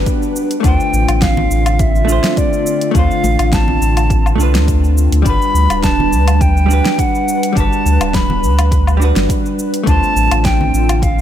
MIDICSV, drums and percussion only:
0, 0, Header, 1, 2, 480
1, 0, Start_track
1, 0, Key_signature, 1, "major"
1, 0, Tempo, 576923
1, 532, Time_signature, 4, 2, 24, 8
1, 9329, End_track
2, 0, Start_track
2, 0, Title_t, "Drums"
2, 52, Note_on_c, 9, 36, 100
2, 53, Note_on_c, 9, 42, 44
2, 58, Note_on_c, 9, 82, 46
2, 136, Note_off_c, 9, 36, 0
2, 136, Note_off_c, 9, 42, 0
2, 142, Note_off_c, 9, 82, 0
2, 187, Note_on_c, 9, 82, 33
2, 270, Note_off_c, 9, 82, 0
2, 299, Note_on_c, 9, 82, 84
2, 382, Note_off_c, 9, 82, 0
2, 422, Note_on_c, 9, 42, 55
2, 427, Note_on_c, 9, 82, 33
2, 505, Note_off_c, 9, 42, 0
2, 511, Note_off_c, 9, 82, 0
2, 533, Note_on_c, 9, 36, 114
2, 534, Note_on_c, 9, 42, 40
2, 539, Note_on_c, 9, 82, 45
2, 616, Note_off_c, 9, 36, 0
2, 617, Note_off_c, 9, 42, 0
2, 622, Note_off_c, 9, 82, 0
2, 668, Note_on_c, 9, 82, 31
2, 751, Note_off_c, 9, 82, 0
2, 779, Note_on_c, 9, 82, 76
2, 862, Note_off_c, 9, 82, 0
2, 903, Note_on_c, 9, 42, 52
2, 903, Note_on_c, 9, 77, 71
2, 908, Note_on_c, 9, 82, 36
2, 986, Note_off_c, 9, 42, 0
2, 986, Note_off_c, 9, 77, 0
2, 991, Note_off_c, 9, 82, 0
2, 1013, Note_on_c, 9, 36, 118
2, 1013, Note_on_c, 9, 38, 79
2, 1013, Note_on_c, 9, 42, 41
2, 1018, Note_on_c, 9, 82, 44
2, 1096, Note_off_c, 9, 36, 0
2, 1096, Note_off_c, 9, 38, 0
2, 1096, Note_off_c, 9, 42, 0
2, 1101, Note_off_c, 9, 82, 0
2, 1142, Note_on_c, 9, 64, 77
2, 1225, Note_off_c, 9, 64, 0
2, 1256, Note_on_c, 9, 82, 81
2, 1339, Note_off_c, 9, 82, 0
2, 1381, Note_on_c, 9, 42, 56
2, 1381, Note_on_c, 9, 77, 77
2, 1387, Note_on_c, 9, 82, 35
2, 1465, Note_off_c, 9, 42, 0
2, 1465, Note_off_c, 9, 77, 0
2, 1470, Note_off_c, 9, 82, 0
2, 1492, Note_on_c, 9, 42, 42
2, 1493, Note_on_c, 9, 36, 108
2, 1497, Note_on_c, 9, 82, 45
2, 1575, Note_off_c, 9, 42, 0
2, 1576, Note_off_c, 9, 36, 0
2, 1580, Note_off_c, 9, 82, 0
2, 1626, Note_on_c, 9, 82, 30
2, 1709, Note_off_c, 9, 82, 0
2, 1737, Note_on_c, 9, 82, 86
2, 1820, Note_off_c, 9, 82, 0
2, 1861, Note_on_c, 9, 38, 80
2, 1861, Note_on_c, 9, 42, 57
2, 1866, Note_on_c, 9, 82, 37
2, 1944, Note_off_c, 9, 38, 0
2, 1944, Note_off_c, 9, 42, 0
2, 1950, Note_off_c, 9, 82, 0
2, 1972, Note_on_c, 9, 36, 110
2, 1973, Note_on_c, 9, 42, 44
2, 1978, Note_on_c, 9, 82, 47
2, 2056, Note_off_c, 9, 36, 0
2, 2056, Note_off_c, 9, 42, 0
2, 2061, Note_off_c, 9, 82, 0
2, 2106, Note_on_c, 9, 82, 34
2, 2189, Note_off_c, 9, 82, 0
2, 2217, Note_on_c, 9, 82, 92
2, 2300, Note_off_c, 9, 82, 0
2, 2341, Note_on_c, 9, 42, 53
2, 2347, Note_on_c, 9, 82, 33
2, 2425, Note_off_c, 9, 42, 0
2, 2430, Note_off_c, 9, 82, 0
2, 2452, Note_on_c, 9, 36, 106
2, 2453, Note_on_c, 9, 42, 38
2, 2458, Note_on_c, 9, 82, 45
2, 2535, Note_off_c, 9, 36, 0
2, 2536, Note_off_c, 9, 42, 0
2, 2541, Note_off_c, 9, 82, 0
2, 2588, Note_on_c, 9, 82, 32
2, 2671, Note_off_c, 9, 82, 0
2, 2695, Note_on_c, 9, 63, 86
2, 2697, Note_on_c, 9, 82, 80
2, 2778, Note_off_c, 9, 63, 0
2, 2781, Note_off_c, 9, 82, 0
2, 2822, Note_on_c, 9, 42, 52
2, 2822, Note_on_c, 9, 77, 70
2, 2827, Note_on_c, 9, 82, 32
2, 2905, Note_off_c, 9, 42, 0
2, 2905, Note_off_c, 9, 77, 0
2, 2911, Note_off_c, 9, 82, 0
2, 2932, Note_on_c, 9, 36, 113
2, 2933, Note_on_c, 9, 38, 75
2, 2933, Note_on_c, 9, 42, 40
2, 2938, Note_on_c, 9, 82, 46
2, 3015, Note_off_c, 9, 36, 0
2, 3016, Note_off_c, 9, 38, 0
2, 3016, Note_off_c, 9, 42, 0
2, 3021, Note_off_c, 9, 82, 0
2, 3059, Note_on_c, 9, 64, 80
2, 3142, Note_off_c, 9, 64, 0
2, 3178, Note_on_c, 9, 82, 80
2, 3262, Note_off_c, 9, 82, 0
2, 3302, Note_on_c, 9, 42, 50
2, 3302, Note_on_c, 9, 77, 71
2, 3308, Note_on_c, 9, 82, 35
2, 3386, Note_off_c, 9, 42, 0
2, 3386, Note_off_c, 9, 77, 0
2, 3391, Note_off_c, 9, 82, 0
2, 3411, Note_on_c, 9, 36, 103
2, 3414, Note_on_c, 9, 42, 41
2, 3419, Note_on_c, 9, 82, 42
2, 3495, Note_off_c, 9, 36, 0
2, 3497, Note_off_c, 9, 42, 0
2, 3503, Note_off_c, 9, 82, 0
2, 3544, Note_on_c, 9, 77, 54
2, 3550, Note_on_c, 9, 82, 32
2, 3628, Note_off_c, 9, 77, 0
2, 3633, Note_off_c, 9, 82, 0
2, 3660, Note_on_c, 9, 82, 79
2, 3744, Note_off_c, 9, 82, 0
2, 3784, Note_on_c, 9, 38, 79
2, 3784, Note_on_c, 9, 42, 52
2, 3789, Note_on_c, 9, 82, 34
2, 3867, Note_off_c, 9, 38, 0
2, 3867, Note_off_c, 9, 42, 0
2, 3873, Note_off_c, 9, 82, 0
2, 3891, Note_on_c, 9, 36, 97
2, 3895, Note_on_c, 9, 42, 43
2, 3900, Note_on_c, 9, 82, 49
2, 3974, Note_off_c, 9, 36, 0
2, 3978, Note_off_c, 9, 42, 0
2, 3983, Note_off_c, 9, 82, 0
2, 4029, Note_on_c, 9, 82, 31
2, 4112, Note_off_c, 9, 82, 0
2, 4140, Note_on_c, 9, 82, 88
2, 4223, Note_off_c, 9, 82, 0
2, 4263, Note_on_c, 9, 42, 54
2, 4268, Note_on_c, 9, 82, 34
2, 4346, Note_off_c, 9, 42, 0
2, 4352, Note_off_c, 9, 82, 0
2, 4371, Note_on_c, 9, 36, 103
2, 4374, Note_on_c, 9, 42, 43
2, 4379, Note_on_c, 9, 82, 44
2, 4454, Note_off_c, 9, 36, 0
2, 4457, Note_off_c, 9, 42, 0
2, 4462, Note_off_c, 9, 82, 0
2, 4509, Note_on_c, 9, 82, 31
2, 4592, Note_off_c, 9, 82, 0
2, 4620, Note_on_c, 9, 82, 76
2, 4703, Note_off_c, 9, 82, 0
2, 4744, Note_on_c, 9, 42, 50
2, 4744, Note_on_c, 9, 77, 74
2, 4749, Note_on_c, 9, 82, 34
2, 4827, Note_off_c, 9, 42, 0
2, 4827, Note_off_c, 9, 77, 0
2, 4832, Note_off_c, 9, 82, 0
2, 4851, Note_on_c, 9, 36, 114
2, 4854, Note_on_c, 9, 38, 73
2, 4854, Note_on_c, 9, 42, 40
2, 4859, Note_on_c, 9, 82, 46
2, 4934, Note_off_c, 9, 36, 0
2, 4937, Note_off_c, 9, 38, 0
2, 4937, Note_off_c, 9, 42, 0
2, 4942, Note_off_c, 9, 82, 0
2, 4990, Note_on_c, 9, 64, 66
2, 5074, Note_off_c, 9, 64, 0
2, 5098, Note_on_c, 9, 82, 79
2, 5181, Note_off_c, 9, 82, 0
2, 5221, Note_on_c, 9, 42, 53
2, 5221, Note_on_c, 9, 77, 76
2, 5226, Note_on_c, 9, 82, 32
2, 5304, Note_off_c, 9, 42, 0
2, 5304, Note_off_c, 9, 77, 0
2, 5310, Note_off_c, 9, 82, 0
2, 5331, Note_on_c, 9, 36, 107
2, 5333, Note_on_c, 9, 42, 38
2, 5338, Note_on_c, 9, 82, 44
2, 5414, Note_off_c, 9, 36, 0
2, 5416, Note_off_c, 9, 42, 0
2, 5421, Note_off_c, 9, 82, 0
2, 5467, Note_on_c, 9, 82, 30
2, 5551, Note_off_c, 9, 82, 0
2, 5578, Note_on_c, 9, 82, 82
2, 5661, Note_off_c, 9, 82, 0
2, 5702, Note_on_c, 9, 38, 73
2, 5702, Note_on_c, 9, 42, 52
2, 5708, Note_on_c, 9, 82, 31
2, 5786, Note_off_c, 9, 38, 0
2, 5786, Note_off_c, 9, 42, 0
2, 5791, Note_off_c, 9, 82, 0
2, 5811, Note_on_c, 9, 36, 102
2, 5814, Note_on_c, 9, 42, 46
2, 5819, Note_on_c, 9, 82, 49
2, 5894, Note_off_c, 9, 36, 0
2, 5897, Note_off_c, 9, 42, 0
2, 5903, Note_off_c, 9, 82, 0
2, 5949, Note_on_c, 9, 82, 31
2, 6032, Note_off_c, 9, 82, 0
2, 6060, Note_on_c, 9, 82, 87
2, 6143, Note_off_c, 9, 82, 0
2, 6184, Note_on_c, 9, 42, 55
2, 6189, Note_on_c, 9, 82, 32
2, 6267, Note_off_c, 9, 42, 0
2, 6272, Note_off_c, 9, 82, 0
2, 6291, Note_on_c, 9, 36, 101
2, 6295, Note_on_c, 9, 42, 42
2, 6301, Note_on_c, 9, 82, 43
2, 6374, Note_off_c, 9, 36, 0
2, 6379, Note_off_c, 9, 42, 0
2, 6384, Note_off_c, 9, 82, 0
2, 6429, Note_on_c, 9, 82, 28
2, 6513, Note_off_c, 9, 82, 0
2, 6540, Note_on_c, 9, 82, 77
2, 6624, Note_off_c, 9, 82, 0
2, 6663, Note_on_c, 9, 42, 52
2, 6663, Note_on_c, 9, 77, 81
2, 6668, Note_on_c, 9, 82, 32
2, 6746, Note_off_c, 9, 42, 0
2, 6746, Note_off_c, 9, 77, 0
2, 6751, Note_off_c, 9, 82, 0
2, 6771, Note_on_c, 9, 36, 106
2, 6775, Note_on_c, 9, 38, 76
2, 6775, Note_on_c, 9, 42, 41
2, 6780, Note_on_c, 9, 82, 43
2, 6854, Note_off_c, 9, 36, 0
2, 6858, Note_off_c, 9, 38, 0
2, 6858, Note_off_c, 9, 42, 0
2, 6863, Note_off_c, 9, 82, 0
2, 6904, Note_on_c, 9, 64, 69
2, 6987, Note_off_c, 9, 64, 0
2, 7018, Note_on_c, 9, 82, 70
2, 7102, Note_off_c, 9, 82, 0
2, 7143, Note_on_c, 9, 42, 55
2, 7143, Note_on_c, 9, 77, 86
2, 7148, Note_on_c, 9, 82, 32
2, 7226, Note_off_c, 9, 42, 0
2, 7226, Note_off_c, 9, 77, 0
2, 7231, Note_off_c, 9, 82, 0
2, 7251, Note_on_c, 9, 36, 100
2, 7254, Note_on_c, 9, 42, 41
2, 7259, Note_on_c, 9, 82, 43
2, 7334, Note_off_c, 9, 36, 0
2, 7337, Note_off_c, 9, 42, 0
2, 7342, Note_off_c, 9, 82, 0
2, 7383, Note_on_c, 9, 77, 62
2, 7388, Note_on_c, 9, 82, 29
2, 7466, Note_off_c, 9, 77, 0
2, 7471, Note_off_c, 9, 82, 0
2, 7501, Note_on_c, 9, 82, 71
2, 7584, Note_off_c, 9, 82, 0
2, 7623, Note_on_c, 9, 38, 70
2, 7623, Note_on_c, 9, 42, 55
2, 7628, Note_on_c, 9, 82, 32
2, 7706, Note_off_c, 9, 38, 0
2, 7706, Note_off_c, 9, 42, 0
2, 7712, Note_off_c, 9, 82, 0
2, 7730, Note_on_c, 9, 36, 99
2, 7736, Note_on_c, 9, 42, 46
2, 7741, Note_on_c, 9, 82, 46
2, 7814, Note_off_c, 9, 36, 0
2, 7819, Note_off_c, 9, 42, 0
2, 7824, Note_off_c, 9, 82, 0
2, 7869, Note_on_c, 9, 82, 29
2, 7952, Note_off_c, 9, 82, 0
2, 7978, Note_on_c, 9, 82, 75
2, 8062, Note_off_c, 9, 82, 0
2, 8101, Note_on_c, 9, 42, 54
2, 8106, Note_on_c, 9, 82, 33
2, 8184, Note_off_c, 9, 42, 0
2, 8190, Note_off_c, 9, 82, 0
2, 8210, Note_on_c, 9, 36, 101
2, 8214, Note_on_c, 9, 42, 46
2, 8219, Note_on_c, 9, 82, 41
2, 8294, Note_off_c, 9, 36, 0
2, 8298, Note_off_c, 9, 42, 0
2, 8303, Note_off_c, 9, 82, 0
2, 8347, Note_on_c, 9, 82, 29
2, 8430, Note_off_c, 9, 82, 0
2, 8458, Note_on_c, 9, 82, 73
2, 8542, Note_off_c, 9, 82, 0
2, 8582, Note_on_c, 9, 42, 56
2, 8582, Note_on_c, 9, 77, 87
2, 8587, Note_on_c, 9, 82, 30
2, 8665, Note_off_c, 9, 42, 0
2, 8665, Note_off_c, 9, 77, 0
2, 8670, Note_off_c, 9, 82, 0
2, 8690, Note_on_c, 9, 36, 108
2, 8692, Note_on_c, 9, 38, 74
2, 8692, Note_on_c, 9, 42, 44
2, 8698, Note_on_c, 9, 82, 42
2, 8774, Note_off_c, 9, 36, 0
2, 8776, Note_off_c, 9, 38, 0
2, 8776, Note_off_c, 9, 42, 0
2, 8781, Note_off_c, 9, 82, 0
2, 8825, Note_on_c, 9, 64, 75
2, 8908, Note_off_c, 9, 64, 0
2, 8939, Note_on_c, 9, 82, 73
2, 9022, Note_off_c, 9, 82, 0
2, 9063, Note_on_c, 9, 42, 61
2, 9063, Note_on_c, 9, 77, 78
2, 9068, Note_on_c, 9, 82, 31
2, 9146, Note_off_c, 9, 42, 0
2, 9146, Note_off_c, 9, 77, 0
2, 9151, Note_off_c, 9, 82, 0
2, 9170, Note_on_c, 9, 36, 98
2, 9174, Note_on_c, 9, 42, 46
2, 9180, Note_on_c, 9, 82, 42
2, 9254, Note_off_c, 9, 36, 0
2, 9258, Note_off_c, 9, 42, 0
2, 9263, Note_off_c, 9, 82, 0
2, 9329, End_track
0, 0, End_of_file